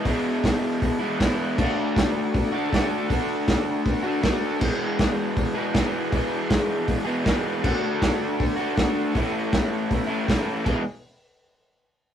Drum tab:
CC |--------|x-------|--------|x-------|
HH |o-o-o-o-|--o-o-o-|o-o-o-o-|--o-o-o-|
SD |--o---o-|--o---o-|--o---o-|--o---o-|
BD |o-o-o-o-|o-o-o-o-|o-o-o-o-|o-o-o-o-|

CC |--------|x-------|--------|x-------|
HH |o-o-o-o-|--o-o-o-|o-o-o-o-|--------|
SD |--o---o-|--o---o-|--o---o-|--------|
BD |o-o-o-o-|o-o-o-o-|o-o-o-o-|o-------|